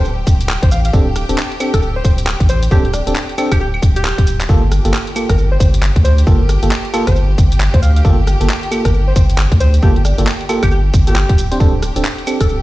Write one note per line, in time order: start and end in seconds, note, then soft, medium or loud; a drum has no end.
0.00 0.23 D1 medium
0.00 4.48 G4 medium
0.00 4.48 G5 medium
0.05 shaker soft
0.27 0.57 D1 loud
0.27 kick loud
0.27 open hi-hat loud
0.27 shaker medium
0.41 closed hi-hat medium
0.41 shaker soft
0.49 clap loud
0.49 shaker soft
0.63 0.90 A1 loud
0.63 0.70 C5 medium
0.63 kick loud
0.63 closed hi-hat medium
0.71 0.80 F5 medium
0.71 open hi-hat loud
0.71 shaker medium
0.85 0.91 F5 medium
0.85 closed hi-hat medium
0.85 shaker soft
0.93 1.24 D1 loud
0.93 1.06 C4 loud
0.93 1.06 D4 medium
0.93 1.06 G4 medium
0.93 1.06 A4 loud
0.93 kick loud
0.93 shaker soft
1.16 cross-stick medium
1.16 open hi-hat loud
1.16 shaker medium
1.29 1.36 D1 medium
1.29 1.37 C4 medium
1.29 1.38 D4 medium
1.29 1.37 G4 medium
1.29 1.37 A4 medium
1.29 closed hi-hat medium
1.29 shaker soft
1.38 clap loud
1.38 shaker soft
1.52 closed hi-hat soft
1.60 1.73 C4 medium
1.60 1.73 D4 medium
1.60 1.73 G4 medium
1.60 1.73 A4 medium
1.60 open hi-hat loud
1.60 claves medium
1.60 shaker medium
1.74 2.01 D1 medium
1.74 1.79 A4 medium
1.74 kick medium
1.74 cross-stick medium
1.74 closed hi-hat medium
1.74 shaker soft
1.82 1.91 A4 medium
1.82 shaker soft
1.96 2.02 C5 medium
2.04 2.35 D1 loud
2.04 2.14 C5 medium
2.04 kick loud
2.04 open hi-hat loud
2.04 shaker medium
2.18 closed hi-hat medium
2.18 shaker soft
2.27 clap loud
2.27 shaker soft
2.40 2.68 A1 loud
2.40 kick loud
2.40 closed hi-hat medium
2.49 2.64 C5 loud
2.49 open hi-hat loud
2.49 shaker medium
2.63 closed hi-hat medium
2.63 shaker soft
2.71 3.02 D1 loud
2.71 2.84 C4 loud
2.71 2.84 D4 medium
2.71 2.84 G4 medium
2.71 2.80 G4 medium
2.71 2.84 A4 loud
2.71 kick loud
2.71 shaker soft
2.85 2.90 G4 medium
2.85 closed hi-hat soft
2.94 3.02 D4 medium
2.94 cross-stick medium
2.94 open hi-hat loud
2.94 shaker medium
3.07 3.14 D1 medium
3.07 3.15 C4 medium
3.07 3.15 D4 medium
3.07 3.13 D4 medium
3.07 3.15 G4 medium
3.07 3.15 A4 loud
3.07 closed hi-hat medium
3.07 shaker soft
3.16 clap loud
3.16 shaker soft
3.29 closed hi-hat soft
3.38 3.51 C4 loud
3.38 3.51 D4 medium
3.38 3.51 G4 medium
3.38 3.51 A4 loud
3.38 open hi-hat loud
3.38 claves medium
3.38 shaker medium
3.52 3.79 D1 medium
3.52 3.57 G4 medium
3.52 kick medium
3.52 cross-stick medium
3.52 closed hi-hat medium
3.52 claves medium
3.52 shaker soft
3.60 3.69 G4 medium
3.60 shaker soft
3.74 claves medium
3.82 4.13 D1 loud
3.82 kick loud
3.82 open hi-hat loud
3.82 shaker medium
3.96 4.41 G4 medium
3.96 closed hi-hat medium
3.96 shaker soft
4.05 clap loud
4.05 shaker soft
4.18 4.46 D1 loud
4.18 kick loud
4.18 closed hi-hat medium
4.27 open hi-hat loud
4.27 shaker medium
4.41 clap medium
4.41 closed hi-hat medium
4.41 shaker soft
4.49 4.80 G1 loud
4.49 4.62 A#3 loud
4.49 4.62 F4 medium
4.49 4.62 G4 medium
4.49 11.59 G4 medium
4.49 4.62 A4 loud
4.49 11.59 G5 medium
4.49 kick loud
4.49 shaker soft
4.72 cross-stick medium
4.72 open hi-hat loud
4.72 shaker medium
4.85 4.92 G1 medium
4.85 4.93 A#3 medium
4.85 4.93 F4 medium
4.85 4.93 G4 medium
4.85 4.93 A4 medium
4.85 closed hi-hat medium
4.85 shaker soft
4.94 clap loud
4.94 shaker soft
5.07 closed hi-hat soft
5.16 5.29 A#3 medium
5.16 5.29 F4 medium
5.16 5.29 G4 medium
5.16 5.29 A4 medium
5.16 open hi-hat loud
5.16 claves medium
5.16 shaker medium
5.29 5.57 G1 medium
5.29 5.35 A#4 medium
5.29 kick medium
5.29 cross-stick medium
5.29 closed hi-hat medium
5.29 shaker soft
5.38 5.47 A#4 medium
5.38 shaker soft
5.52 5.57 C5 medium
5.60 5.91 G1 loud
5.60 5.69 C5 medium
5.60 kick loud
5.60 open hi-hat loud
5.60 shaker medium
5.74 closed hi-hat medium
5.74 shaker soft
5.83 clap loud
5.83 shaker soft
5.96 6.23 D2 loud
5.96 kick loud
5.96 closed hi-hat medium
6.04 6.19 C5 loud
6.04 open hi-hat loud
6.04 shaker medium
6.18 closed hi-hat medium
6.18 shaker soft
6.27 6.57 G1 loud
6.27 6.40 A#3 loud
6.27 6.40 F4 medium
6.27 6.40 G4 medium
6.27 6.40 A4 loud
6.27 6.63 A#4 medium
6.27 kick loud
6.27 shaker soft
6.49 cross-stick medium
6.49 open hi-hat loud
6.49 shaker medium
6.63 6.69 G1 medium
6.63 6.71 A#3 medium
6.63 6.71 F4 medium
6.63 6.71 G4 medium
6.63 6.71 A4 medium
6.63 closed hi-hat medium
6.63 shaker soft
6.71 clap loud
6.71 shaker soft
6.85 closed hi-hat soft
6.94 7.06 A#3 loud
6.94 7.06 F4 loud
6.94 7.06 G4 medium
6.94 7.06 A4 loud
6.94 open hi-hat loud
6.94 claves medium
6.94 shaker medium
7.07 7.35 G1 medium
7.07 7.17 C5 medium
7.07 kick medium
7.07 cross-stick medium
7.07 closed hi-hat medium
7.07 shaker soft
7.16 shaker soft
7.38 7.69 G1 loud
7.38 kick loud
7.38 open hi-hat loud
7.38 shaker medium
7.52 closed hi-hat medium
7.52 shaker soft
7.60 clap loud
7.60 shaker soft
7.74 8.01 D2 loud
7.74 7.81 C5 medium
7.74 kick loud
7.74 closed hi-hat medium
7.82 7.91 F5 medium
7.82 open hi-hat loud
7.82 shaker medium
7.96 8.02 F5 medium
7.96 closed hi-hat medium
7.96 shaker soft
8.05 8.35 G1 loud
8.05 8.17 A#3 loud
8.05 8.17 F4 medium
8.05 8.17 G4 medium
8.05 8.17 A4 loud
8.05 kick loud
8.05 shaker soft
8.27 cross-stick medium
8.27 open hi-hat loud
8.27 shaker medium
8.41 8.47 G1 medium
8.41 8.49 A#3 medium
8.41 8.49 F4 medium
8.41 8.49 G4 medium
8.41 8.49 A4 medium
8.41 closed hi-hat medium
8.41 shaker soft
8.50 clap loud
8.50 shaker soft
8.63 closed hi-hat soft
8.71 8.84 A#3 medium
8.71 8.84 F4 medium
8.71 8.84 G4 medium
8.71 8.84 A4 medium
8.71 open hi-hat loud
8.71 claves medium
8.71 shaker medium
8.85 9.12 G1 loud
8.85 8.91 A#4 medium
8.85 kick medium
8.85 cross-stick medium
8.85 closed hi-hat medium
8.85 shaker soft
8.94 9.02 A#4 medium
8.94 shaker soft
9.08 9.13 C5 medium
9.16 9.46 G1 loud
9.16 9.25 C5 medium
9.16 kick loud
9.16 open hi-hat loud
9.16 shaker medium
9.30 closed hi-hat medium
9.30 shaker soft
9.38 clap loud
9.52 9.79 D2 loud
9.52 kick loud
9.52 closed hi-hat medium
9.60 9.75 C5 medium
9.60 open hi-hat loud
9.60 shaker medium
9.74 closed hi-hat medium
9.74 shaker soft
9.83 10.13 G1 loud
9.83 9.95 A#3 loud
9.83 9.95 F4 medium
9.83 9.95 G4 medium
9.83 9.91 G4 medium
9.83 9.95 A4 loud
9.83 kick loud
9.83 shaker soft
9.96 10.02 G4 medium
9.96 closed hi-hat soft
10.05 10.14 D4 medium
10.05 cross-stick medium
10.05 open hi-hat loud
10.05 shaker medium
10.18 10.25 G1 medium
10.18 10.26 A#3 medium
10.18 10.24 D4 medium
10.18 10.27 F4 medium
10.18 10.27 G4 medium
10.18 10.26 A4 medium
10.18 closed hi-hat medium
10.18 shaker soft
10.27 clap loud
10.27 shaker soft
10.41 closed hi-hat soft
10.49 10.62 A#3 loud
10.49 10.62 F4 medium
10.49 10.62 G4 medium
10.49 10.62 A4 loud
10.49 open hi-hat loud
10.49 claves medium
10.49 shaker medium
10.63 10.90 G1 medium
10.63 10.68 G4 medium
10.63 kick medium
10.63 cross-stick medium
10.63 closed hi-hat medium
10.63 claves medium
10.63 shaker soft
10.71 10.80 G4 medium
10.71 shaker soft
10.94 11.24 G1 loud
10.94 kick loud
10.94 open hi-hat loud
10.94 shaker medium
11.07 11.15 A#3 medium
11.07 11.15 F4 medium
11.07 11.15 G4 medium
11.07 11.44 G4 loud
11.07 11.15 A4 medium
11.07 closed hi-hat medium
11.07 shaker soft
11.16 clap loud
11.16 shaker soft
11.29 11.57 D1 loud
11.29 kick loud
11.29 closed hi-hat medium
11.38 open hi-hat loud
11.38 shaker medium
11.52 11.58 C4 medium
11.52 11.58 D4 medium
11.52 11.58 G4 medium
11.52 11.58 C5 loud
11.52 closed hi-hat medium
11.52 shaker soft
11.60 11.91 D1 loud
11.60 11.73 C4 loud
11.60 11.73 D4 medium
11.60 12.62 G4 medium
11.60 11.73 G4 medium
11.60 11.73 A4 loud
11.60 12.62 G5 medium
11.60 kick loud
11.60 shaker soft
11.82 cross-stick medium
11.82 open hi-hat loud
11.82 shaker medium
11.96 12.03 D1 medium
11.96 12.04 C4 medium
11.96 12.04 D4 medium
11.96 12.04 G4 medium
11.96 12.04 A4 medium
11.96 closed hi-hat medium
11.96 shaker soft
12.05 clap loud
12.05 shaker soft
12.18 closed hi-hat soft
12.27 12.40 C4 medium
12.27 12.40 D4 medium
12.27 12.40 G4 medium
12.27 12.40 A4 medium
12.27 open hi-hat loud
12.27 claves medium
12.27 shaker medium
12.40 12.62 D1 medium
12.40 12.46 A4 medium
12.40 kick medium
12.40 cross-stick medium
12.40 closed hi-hat medium
12.40 shaker soft
12.49 12.58 A4 medium
12.49 shaker soft